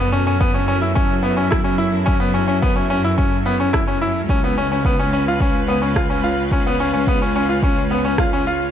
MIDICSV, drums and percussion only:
0, 0, Header, 1, 2, 480
1, 0, Start_track
1, 0, Key_signature, 3, "minor"
1, 0, Tempo, 555556
1, 1791, Time_signature, 4, 2, 24, 8
1, 7526, End_track
2, 0, Start_track
2, 0, Title_t, "Drums"
2, 108, Note_on_c, 9, 42, 67
2, 195, Note_off_c, 9, 42, 0
2, 227, Note_on_c, 9, 42, 29
2, 314, Note_off_c, 9, 42, 0
2, 342, Note_on_c, 9, 42, 45
2, 352, Note_on_c, 9, 36, 106
2, 429, Note_off_c, 9, 42, 0
2, 438, Note_off_c, 9, 36, 0
2, 586, Note_on_c, 9, 42, 63
2, 672, Note_off_c, 9, 42, 0
2, 707, Note_on_c, 9, 42, 43
2, 793, Note_off_c, 9, 42, 0
2, 833, Note_on_c, 9, 36, 105
2, 919, Note_off_c, 9, 36, 0
2, 1068, Note_on_c, 9, 42, 64
2, 1154, Note_off_c, 9, 42, 0
2, 1189, Note_on_c, 9, 42, 29
2, 1275, Note_off_c, 9, 42, 0
2, 1312, Note_on_c, 9, 37, 72
2, 1312, Note_on_c, 9, 42, 46
2, 1314, Note_on_c, 9, 36, 102
2, 1399, Note_off_c, 9, 37, 0
2, 1399, Note_off_c, 9, 42, 0
2, 1400, Note_off_c, 9, 36, 0
2, 1550, Note_on_c, 9, 42, 64
2, 1636, Note_off_c, 9, 42, 0
2, 1791, Note_on_c, 9, 42, 42
2, 1793, Note_on_c, 9, 36, 104
2, 1877, Note_off_c, 9, 42, 0
2, 1880, Note_off_c, 9, 36, 0
2, 2028, Note_on_c, 9, 42, 66
2, 2114, Note_off_c, 9, 42, 0
2, 2153, Note_on_c, 9, 42, 29
2, 2239, Note_off_c, 9, 42, 0
2, 2269, Note_on_c, 9, 42, 40
2, 2272, Note_on_c, 9, 36, 104
2, 2356, Note_off_c, 9, 42, 0
2, 2359, Note_off_c, 9, 36, 0
2, 2509, Note_on_c, 9, 42, 67
2, 2595, Note_off_c, 9, 42, 0
2, 2628, Note_on_c, 9, 42, 39
2, 2714, Note_off_c, 9, 42, 0
2, 2751, Note_on_c, 9, 36, 100
2, 2838, Note_off_c, 9, 36, 0
2, 2986, Note_on_c, 9, 42, 63
2, 3072, Note_off_c, 9, 42, 0
2, 3109, Note_on_c, 9, 42, 28
2, 3196, Note_off_c, 9, 42, 0
2, 3230, Note_on_c, 9, 36, 101
2, 3230, Note_on_c, 9, 37, 74
2, 3230, Note_on_c, 9, 42, 43
2, 3317, Note_off_c, 9, 36, 0
2, 3317, Note_off_c, 9, 37, 0
2, 3317, Note_off_c, 9, 42, 0
2, 3470, Note_on_c, 9, 42, 59
2, 3556, Note_off_c, 9, 42, 0
2, 3705, Note_on_c, 9, 42, 41
2, 3708, Note_on_c, 9, 36, 103
2, 3792, Note_off_c, 9, 42, 0
2, 3795, Note_off_c, 9, 36, 0
2, 3948, Note_on_c, 9, 42, 64
2, 4035, Note_off_c, 9, 42, 0
2, 4070, Note_on_c, 9, 42, 26
2, 4156, Note_off_c, 9, 42, 0
2, 4187, Note_on_c, 9, 42, 41
2, 4188, Note_on_c, 9, 36, 100
2, 4273, Note_off_c, 9, 42, 0
2, 4275, Note_off_c, 9, 36, 0
2, 4430, Note_on_c, 9, 42, 64
2, 4516, Note_off_c, 9, 42, 0
2, 4549, Note_on_c, 9, 42, 43
2, 4635, Note_off_c, 9, 42, 0
2, 4669, Note_on_c, 9, 36, 101
2, 4755, Note_off_c, 9, 36, 0
2, 4906, Note_on_c, 9, 42, 62
2, 4992, Note_off_c, 9, 42, 0
2, 5027, Note_on_c, 9, 42, 27
2, 5114, Note_off_c, 9, 42, 0
2, 5149, Note_on_c, 9, 36, 100
2, 5150, Note_on_c, 9, 37, 75
2, 5150, Note_on_c, 9, 42, 41
2, 5235, Note_off_c, 9, 36, 0
2, 5237, Note_off_c, 9, 37, 0
2, 5237, Note_off_c, 9, 42, 0
2, 5388, Note_on_c, 9, 42, 59
2, 5475, Note_off_c, 9, 42, 0
2, 5629, Note_on_c, 9, 36, 98
2, 5631, Note_on_c, 9, 42, 42
2, 5715, Note_off_c, 9, 36, 0
2, 5717, Note_off_c, 9, 42, 0
2, 5869, Note_on_c, 9, 42, 61
2, 5955, Note_off_c, 9, 42, 0
2, 5991, Note_on_c, 9, 42, 28
2, 6077, Note_off_c, 9, 42, 0
2, 6110, Note_on_c, 9, 36, 98
2, 6112, Note_on_c, 9, 42, 39
2, 6196, Note_off_c, 9, 36, 0
2, 6199, Note_off_c, 9, 42, 0
2, 6350, Note_on_c, 9, 42, 65
2, 6436, Note_off_c, 9, 42, 0
2, 6471, Note_on_c, 9, 42, 42
2, 6557, Note_off_c, 9, 42, 0
2, 6588, Note_on_c, 9, 36, 102
2, 6674, Note_off_c, 9, 36, 0
2, 6827, Note_on_c, 9, 42, 66
2, 6914, Note_off_c, 9, 42, 0
2, 6952, Note_on_c, 9, 42, 27
2, 7038, Note_off_c, 9, 42, 0
2, 7069, Note_on_c, 9, 36, 107
2, 7070, Note_on_c, 9, 37, 77
2, 7070, Note_on_c, 9, 42, 44
2, 7156, Note_off_c, 9, 36, 0
2, 7156, Note_off_c, 9, 37, 0
2, 7156, Note_off_c, 9, 42, 0
2, 7313, Note_on_c, 9, 42, 61
2, 7399, Note_off_c, 9, 42, 0
2, 7526, End_track
0, 0, End_of_file